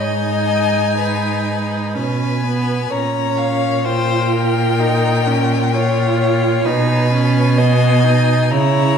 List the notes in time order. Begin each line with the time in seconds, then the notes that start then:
Already playing: G#2 D#4
0.00 D#5 G#5
0.98 B4
1.95 B2 C#4 B4 G#5
2.44 B3
2.91 A#2 C#4 C#5 A#5
3.38 F5
3.85 F4 C5 G5
4.32 A#4
4.80 D#4
5.27 C#4
5.73 F4 C#5
6.20 C#5
6.65 B2 D#4 B4 G#5
7.12 C#4
7.58 B3 D#5
8.04 D#4
8.51 C#3 E4 C#5 A#5